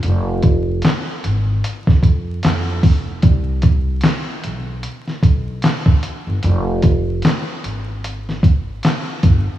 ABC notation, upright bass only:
X:1
M:4/4
L:1/16
Q:"Swing 16ths" 1/4=75
K:Flyd
V:1 name="Upright bass" clef=bass
F,,,4 z2 _A,,,2 z F,,, F,,2 F,,2 F,,,2 | C,,4 z2 B,,,2 z2 B,,,2 z3 G,,, | F,,,4 z2 _A,,,6 z2 G,,, z |]